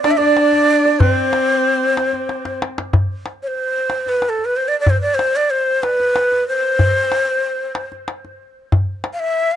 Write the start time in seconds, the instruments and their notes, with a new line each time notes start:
Already playing: santur C5
0.03 cello D4, ney D5, santur D5, tombak tek
0.11 ney E5
0.17 cello D4, ney D5, santur D5, tombak ka
0.37 tombak tek
0.53 tombak ka
0.85 santur D5
1.00 cello C4, ney B4, santur C5, tombak dum
1.11 ney C5
1.33 tombak tek
1.97 tombak tek
2.13 tombak ka
2.29 tombak tek
2.45 tombak ka
2.62 tombak tek
2.78 tombak ka
2.93 tombak dum
3.26 tombak tek
3.43 ney C#5
3.47 ney C5
3.90 tombak tek
4.06 ney B4, tombak ka
4.22 tombak tek
4.29 ney A4
4.38 tombak ka
4.45 ney B4
4.57 ney C5
4.68 ney D5
4.80 ney D5
4.87 ney C5, tombak dum
5.01 ney D5
5.15 ney C5
5.19 tombak tek
5.36 ney D5
5.50 ney C5
5.83 ney B4, tombak tek
6.00 tombak ka
6.16 tombak tek
6.32 tombak ka
6.48 ney C5
6.79 tombak dum
7.12 tombak tek
7.75 tombak tek
7.92 tombak ka
8.08 tombak tek
8.25 tombak ka
8.72 tombak dum
9.04 tombak tek
9.13 ney F5
9.20 ney E5
9.52 ney F5